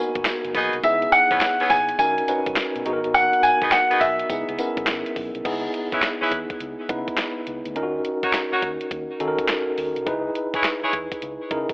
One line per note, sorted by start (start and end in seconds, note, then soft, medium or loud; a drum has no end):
0.00 0.86 A#3 medium
0.00 0.84 B3 medium
0.00 0.84 D#4 medium
0.00 0.85 F#4 medium
0.00 0.78 A#4 medium
0.00 0.51 G#5 medium
0.15 0.23 G#1 medium
0.15 kick loud
0.15 closed hi-hat medium
0.25 snare loud
0.25 clap medium
0.25 closed hi-hat medium
0.25 tambourine medium
0.45 0.52 F#1 medium
0.45 closed hi-hat medium
0.55 0.68 B1 medium
0.55 0.75 B3 medium
0.55 0.75 D#4 medium
0.55 0.76 F#4 medium
0.55 0.76 G#4 medium
0.55 kick medium
0.55 closed hi-hat medium
0.73 0.81 C2 loud
0.73 closed hi-hat medium
0.83 1.05 C#2 loud
0.83 1.91 B3 medium
0.83 1.91 D#4 medium
0.83 1.91 E4 medium
0.83 1.91 G#4 medium
0.83 1.10 E5 medium
0.83 kick loud
0.83 closed hi-hat medium
0.83 tambourine medium
1.02 closed hi-hat medium
1.12 1.72 F#5 loud
1.12 closed hi-hat medium
1.12 tambourine medium
1.31 1.38 B1 medium
1.31 1.45 B3 medium
1.31 1.45 C#4 medium
1.31 1.45 E4 medium
1.31 1.45 G#4 medium
1.31 kick medium
1.31 closed hi-hat medium
1.41 snare loud
1.41 clap medium
1.41 closed hi-hat medium
1.41 tambourine medium
1.60 1.74 B3 medium
1.60 1.74 C#4 medium
1.60 1.74 E4 medium
1.60 1.74 G#4 medium
1.60 closed hi-hat soft
1.70 1.91 G#1 medium
1.70 1.97 G#5 loud
1.70 kick medium
1.70 snare medium
1.70 open hi-hat medium
1.70 tambourine medium
1.89 closed hi-hat medium
1.99 2.20 B1 loud
1.99 2.26 C#4 medium
1.99 2.26 D#4 medium
1.99 2.26 F#4 medium
1.99 2.26 A#4 medium
1.99 2.81 G#5 loud
1.99 kick loud
1.99 closed hi-hat medium
1.99 tambourine medium
2.18 closed hi-hat medium
2.28 2.86 C#4 medium
2.28 2.85 D#4 medium
2.28 2.85 F#4 medium
2.28 2.86 B4 medium
2.28 closed hi-hat medium
2.28 tambourine medium
2.46 2.54 B1 medium
2.46 kick loud
2.46 closed hi-hat medium
2.56 snare loud
2.56 clap medium
2.56 closed hi-hat medium
2.56 tambourine medium
2.76 2.83 B2 loud
2.76 closed hi-hat medium
2.85 3.28 G#1 loud
2.85 3.92 B3 medium
2.85 3.93 D#4 medium
2.85 3.93 F#4 medium
2.85 2.94 G#4 medium
2.85 closed hi-hat medium
2.93 3.96 A#4 loud
3.04 closed hi-hat medium
3.14 3.44 F#5 loud
3.14 closed hi-hat medium
3.14 tambourine medium
3.33 closed hi-hat soft
3.43 3.73 G#5 loud
3.43 closed hi-hat medium
3.43 tambourine medium
3.61 3.69 G#1 medium
3.61 3.76 B3 medium
3.61 3.76 D#4 medium
3.61 3.76 F#4 medium
3.61 3.76 G#4 medium
3.61 kick loud
3.61 closed hi-hat soft
3.71 4.02 F#5 medium
3.71 snare loud
3.71 clap medium
3.71 closed hi-hat medium
3.71 tambourine medium
3.90 4.04 B3 medium
3.90 4.05 D#4 medium
3.90 4.05 F#4 medium
3.90 4.05 G#4 medium
3.90 closed hi-hat medium
4.00 4.22 B1 medium
4.00 5.12 E5 medium
4.00 kick medium
4.00 open hi-hat medium
4.00 tambourine medium
4.19 closed hi-hat medium
4.30 4.43 C#2 loud
4.30 4.56 B3 medium
4.30 4.57 D#4 medium
4.30 4.57 E4 medium
4.30 4.57 G#4 medium
4.30 kick loud
4.30 closed hi-hat medium
4.30 tambourine medium
4.49 4.56 C#2 medium
4.49 closed hi-hat medium
4.59 5.39 B3 medium
4.59 5.39 C#4 medium
4.59 5.39 E4 medium
4.59 5.39 A#4 medium
4.59 closed hi-hat medium
4.59 tambourine medium
4.77 4.85 B1 medium
4.77 kick medium
4.77 closed hi-hat medium
4.87 5.01 G#1 medium
4.87 snare loud
4.87 clap medium
4.87 closed hi-hat medium
4.87 tambourine medium
5.06 closed hi-hat medium
5.16 5.30 B1 medium
5.16 kick medium
5.16 open hi-hat medium
5.35 5.42 C2 loud
5.35 closed hi-hat soft
5.45 5.66 C#2 loud
5.45 6.52 B3 medium
5.45 6.52 D#4 medium
5.45 6.52 E4 medium
5.45 6.53 G#4 loud
5.45 kick loud
5.45 closed hi-hat medium
5.45 crash medium
5.74 closed hi-hat medium
5.92 6.06 C#4 medium
5.92 6.07 E4 medium
5.92 6.07 G#4 medium
5.92 6.07 B4 medium
5.92 muted fingered electric bass stroke medium
5.92 kick loud
5.92 closed hi-hat medium
6.02 snare loud
6.02 clap medium
6.02 closed hi-hat medium
6.21 6.35 C#4 medium
6.21 6.35 E4 medium
6.21 6.36 G#4 medium
6.21 6.36 B4 medium
6.21 muted fingered electric bass stroke soft
6.32 6.45 E2 medium
6.32 kick medium
6.32 closed hi-hat medium
6.50 kick loud
6.50 closed hi-hat medium
6.60 6.74 C#2 medium
6.60 closed hi-hat medium
6.89 7.03 C#3 medium
6.89 7.69 B3 medium
6.89 7.70 D#4 medium
6.89 7.70 E4 medium
6.89 7.70 B4 loud
6.89 kick loud
6.89 closed hi-hat medium
7.08 kick medium
7.08 closed hi-hat soft
7.17 snare loud
7.17 clap medium
7.17 closed hi-hat medium
7.47 7.61 C#2 medium
7.47 closed hi-hat medium
7.65 7.73 D2 medium
7.65 closed hi-hat medium
7.76 7.97 D#2 loud
7.76 8.83 C#4 medium
7.76 8.83 D#4 medium
7.76 7.85 F4 medium
7.76 8.83 A#4 loud
7.76 closed hi-hat medium
7.83 8.86 F#4 medium
8.05 closed hi-hat medium
8.23 8.37 D#4 medium
8.23 8.37 F#4 medium
8.23 8.37 A#4 medium
8.23 8.37 C#5 medium
8.23 muted fingered electric bass stroke medium
8.23 kick medium
8.23 closed hi-hat soft
8.33 snare medium
8.33 clap medium
8.33 closed hi-hat medium
8.52 8.66 D#4 medium
8.52 8.66 F#4 medium
8.52 8.66 A#4 medium
8.52 8.66 C#5 medium
8.52 muted fingered electric bass stroke soft
8.62 8.76 D#2 medium
8.62 kick medium
8.62 closed hi-hat medium
8.81 closed hi-hat medium
8.91 9.05 D#2 medium
8.91 kick medium
8.91 closed hi-hat medium
9.20 9.34 D#3 medium
9.20 10.00 C#4 medium
9.20 10.00 D#4 medium
9.20 10.01 F#4 medium
9.20 9.29 A4 medium
9.20 closed hi-hat medium
9.28 10.04 A#4 loud
9.39 kick medium
9.39 closed hi-hat soft
9.48 snare loud
9.48 clap medium
9.48 closed hi-hat medium
9.78 9.91 D#2 medium
9.78 open hi-hat medium
9.96 10.04 C2 medium
9.96 closed hi-hat soft
10.06 10.28 C#2 loud
10.06 11.13 D#4 medium
10.06 11.14 E4 medium
10.06 11.14 G#4 medium
10.06 11.14 B4 loud
10.06 kick loud
10.06 closed hi-hat medium
10.35 closed hi-hat medium
10.54 10.68 E4 medium
10.54 10.68 G#4 medium
10.54 10.68 B4 medium
10.54 10.68 C#5 medium
10.54 muted fingered electric bass stroke soft
10.54 kick loud
10.54 closed hi-hat soft
10.63 snare loud
10.63 clap medium
10.63 closed hi-hat medium
10.83 10.97 E4 medium
10.83 10.97 G#4 medium
10.83 10.97 B4 medium
10.83 10.97 C#5 medium
10.83 muted fingered electric bass stroke soft
10.93 11.07 E2 medium
10.93 kick medium
10.93 closed hi-hat medium
11.12 kick medium
11.12 closed hi-hat medium
11.22 11.36 C#2 loud
11.22 closed hi-hat medium
11.51 11.64 C#3 medium
11.51 11.73 D#4 medium
11.51 11.73 E4 medium
11.51 11.73 G#4 medium
11.51 11.73 A#4 medium
11.51 kick loud
11.51 closed hi-hat medium
11.69 kick medium
11.69 closed hi-hat soft